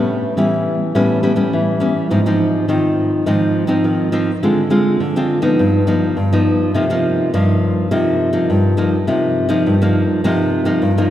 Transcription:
0.00 0.34 A2 medium
0.00 0.33 G3 medium
0.00 0.33 B3 medium
0.00 0.33 C#4 medium
0.37 0.92 E3 medium
0.37 0.74 G3 medium
0.37 0.74 B3 soft
0.37 0.75 C#4 medium
0.95 1.50 A2 medium
0.95 1.19 G3 medium
0.95 1.19 B3 medium
0.95 1.19 C#4 medium
1.23 1.33 G3 medium
1.23 1.33 B3 soft
1.23 1.33 C#4 medium
1.36 1.76 G3 medium
1.36 1.76 B3 medium
1.36 1.76 C#4 medium
1.53 2.08 E3 medium
1.80 2.08 G3 soft
1.80 2.08 B3 soft
1.80 2.08 C#4 medium
2.10 2.66 G#2 medium
2.10 2.19 F3 medium
2.10 2.19 C4 soft
2.10 2.20 D#4 medium
2.26 2.64 F3 medium
2.26 2.65 C4 medium
2.26 2.65 D#4 medium
2.68 3.24 D#3 medium
2.68 3.22 F3 medium
2.68 3.22 C4 medium
2.68 3.22 D#4 medium
3.26 3.82 G#2 medium
3.26 3.65 F3 medium
3.26 3.66 C4 medium
3.26 3.66 D#4 medium
3.67 4.08 F3 medium
3.67 4.08 C4 medium
3.67 4.08 D#4 medium
3.84 4.40 D#3 medium
4.12 4.30 F3 medium
4.12 4.30 C4 medium
4.12 4.31 D#4 medium
4.43 4.98 D3 medium
4.43 4.60 G#3 medium
4.43 4.60 C4 medium
4.43 4.60 F4 medium
4.70 4.98 G#3 medium
4.70 4.99 C4 medium
4.70 4.99 F4 medium
5.00 5.56 D3 medium
5.16 5.40 G#3 medium
5.16 5.40 C4 medium
5.16 5.41 F4 medium
5.42 5.82 F3 medium
5.42 5.82 B3 medium
5.42 5.82 D#4 medium
5.59 6.14 G2 medium
5.87 6.15 F3 medium
5.87 6.15 B3 medium
5.87 6.15 D#4 medium
6.17 6.72 G2 medium
6.33 6.71 F3 medium
6.33 6.71 B3 medium
6.33 6.71 D#4 medium
6.74 7.30 C3 medium
6.74 6.83 F3 medium
6.74 6.84 A#3 medium
6.74 6.84 D#4 medium
6.90 7.29 F3 medium
6.90 7.29 A#3 medium
6.90 7.29 D#4 medium
7.34 7.89 G2 medium
7.34 7.87 F3 medium
7.34 7.87 A#3 medium
7.34 7.87 D#4 medium
7.91 8.46 C3 medium
7.91 8.30 F3 medium
7.91 8.30 A#3 medium
7.91 8.30 D#4 medium
8.33 8.73 F3 medium
8.33 8.73 A#3 medium
8.33 8.73 D#4 medium
8.50 9.05 G2 medium
8.77 8.95 F3 medium
8.77 8.95 A#3 medium
8.77 8.95 D#4 medium
9.07 9.63 C3 medium
9.07 9.46 F3 medium
9.07 9.46 A#3 medium
9.07 9.46 D#4 medium
9.49 9.74 F3 medium
9.49 9.74 A#3 medium
9.49 9.75 D#4 medium
9.66 10.21 G2 medium
9.82 10.20 F3 medium
9.82 10.20 A#3 medium
9.82 10.20 D#4 medium
10.24 10.79 C3 medium
10.24 10.63 F3 medium
10.24 10.63 A#3 medium
10.24 10.63 D#4 medium
10.65 10.91 F3 medium
10.65 10.91 A#3 medium
10.65 10.91 D#4 medium
10.82 11.10 G2 medium
10.98 11.10 F3 medium
10.98 11.10 A#3 medium
10.98 11.10 D#4 medium

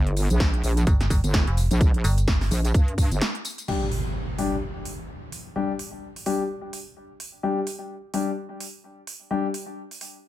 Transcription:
0.00 0.28 G1 loud
0.07 closed hi-hat soft
0.17 open hi-hat loud
0.17 tambourine medium
0.30 0.62 A#1 loud
0.30 closed hi-hat medium
0.30 tambourine soft
0.40 kick loud
0.40 snare loud
0.40 closed hi-hat medium
0.40 tambourine soft
0.54 closed hi-hat soft
0.63 0.85 A#1 loud
0.63 open hi-hat loud
0.63 tambourine medium
0.77 closed hi-hat medium
0.77 tambourine soft
0.87 1.09 G1 loud
0.87 kick loud
0.87 closed hi-hat medium
0.87 tambourine soft
1.01 snare soft
1.01 closed hi-hat soft
1.10 1.22 G1 loud
1.10 kick medium
1.10 open hi-hat loud
1.10 tambourine medium
1.24 1.45 G1 loud
1.24 closed hi-hat medium
1.24 tambourine soft
1.34 kick loud
1.34 snare loud
1.34 closed hi-hat medium
1.34 tambourine soft
1.47 1.69 F1 loud
1.47 closed hi-hat soft
1.57 open hi-hat loud
1.57 tambourine medium
1.71 2.03 A#1 loud
1.71 closed hi-hat medium
1.71 tambourine soft
1.81 kick loud
1.81 closed hi-hat medium
1.81 tambourine soft
1.94 closed hi-hat soft
2.04 2.49 G1 loud
2.04 open hi-hat loud
2.04 tambourine medium
2.18 closed hi-hat medium
2.18 tambourine soft
2.28 kick loud
2.28 snare loud
2.28 closed hi-hat medium
2.28 tambourine soft
2.41 snare soft
2.41 open hi-hat medium
2.51 2.73 A#1 loud
2.51 open hi-hat loud
2.51 tambourine medium
2.65 closed hi-hat medium
2.65 tambourine soft
2.74 3.09 G2 medium
2.74 kick loud
2.74 closed hi-hat medium
2.74 tambourine soft
2.88 closed hi-hat soft
2.98 kick medium
2.98 open hi-hat loud
2.98 tambourine medium
3.11 3.21 G1 loud
3.11 closed hi-hat medium
3.11 tambourine soft
3.21 snare loud
3.21 closed hi-hat medium
3.21 tambourine soft
3.35 closed hi-hat soft
3.45 open hi-hat loud
3.45 tambourine medium
3.58 closed hi-hat medium
3.58 tambourine soft
3.68 3.83 G3 medium
3.68 3.83 D4 medium
3.68 3.83 G4 medium
3.68 crash medium
3.68 impact medium
3.92 open hi-hat medium
4.38 4.53 G3 medium
4.38 4.53 D4 medium
4.38 4.53 G4 medium
4.38 open hi-hat medium
4.85 open hi-hat medium
5.32 open hi-hat medium
5.56 5.70 G3 medium
5.56 5.70 D4 medium
5.56 5.70 G4 medium
5.79 open hi-hat loud
6.16 open hi-hat medium
6.26 6.41 G3 medium
6.26 6.41 D4 medium
6.26 6.41 G4 medium
6.26 open hi-hat medium
6.73 open hi-hat loud
7.20 open hi-hat loud
7.43 7.58 G3 medium
7.43 7.58 D4 medium
7.43 7.58 G4 medium
7.67 open hi-hat loud
8.14 8.28 G3 medium
8.14 8.28 D4 medium
8.14 8.28 G4 medium
8.14 open hi-hat loud
8.60 open hi-hat medium
9.07 open hi-hat loud
9.31 9.45 G3 medium
9.31 9.45 D4 medium
9.31 9.45 G4 medium
9.54 open hi-hat loud
9.91 open hi-hat medium
10.01 open hi-hat loud

